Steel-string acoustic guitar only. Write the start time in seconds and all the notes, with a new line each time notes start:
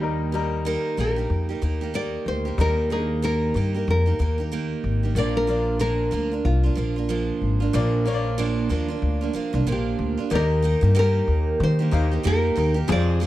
Already playing: D#3 A#3 D#4 G4
0.32 D#3 A#3 D#4 G4
0.65 D#3 A#3 D#4 G4
0.97 D#3 A#3 D#4 G4
1.16 A#3 D#4 G4
1.49 A#3 D#4 G4
1.62 D#3 A#3 D#4 G4
1.81 A#3 D#4 G4
1.94 D#3 A#3 D#4 G4
2.45 A#3 D#4 G4
2.59 D#3 A#3 D#4 G4
2.90 D#3 A#3 D#4
3.22 D#3 A#3 D#4 G4
3.54 D#3 A#3 D#4 G4
3.74 A#3 D#4 G4
4.06 A#3 D#4 G4
4.19 D#3 A#3 D#4 G4
4.38 A#3 D#4 G4
4.52 D#3 A#3 D#4 G4
5.03 A#3 D#4 G4
5.16 A#2 F3 A#3 D4 F4
5.47 F3 A#3 D4 F4
5.79 A#2 F3 A#3 D4 F4
6.11 F3 A#3 D4 F4
6.31 A#3 D4 F4
6.63 A#3 D4 F4
6.75 F3 A#3 D4 F4
6.96 A#3 D4 F4
7.09 A#2 F3 A#3 D4 F4
7.60 A#3 D4 F4
7.73 A#2 F3 A#3 D4 F4
8.05 F3 A#3 D4 F4
8.38 A#2 F3 A#3 D4 F4
8.69 F3 A#3 D4 F4
8.88 A#3 D4 F4
9.21 A#3 D4 F4
9.33 F3 A#3 D4 F4
9.53 A#3 D4 F4
9.67 A#2 F3 A#3 D4 F4
10.17 A#3 D4 F4
10.30 D#3 A#3 D#4 G4
10.62 D#3 A#3 D#4 G4
10.81 A#3 D#4 G4
10.95 D#3 A#3 D#4 G4
11.79 A#3 D#4 G4
11.91 D#3 A#3 D#4 G4
12.11 A#3 D#4 G4
12.23 D#3 A#3 D#4 G4
12.56 D#3 A#3 D#4 G4
12.74 A#3 D#4 G4
12.88 F2 C3 F3 G#3 C4 G#4
13.20 F3 G#3 C4 G#4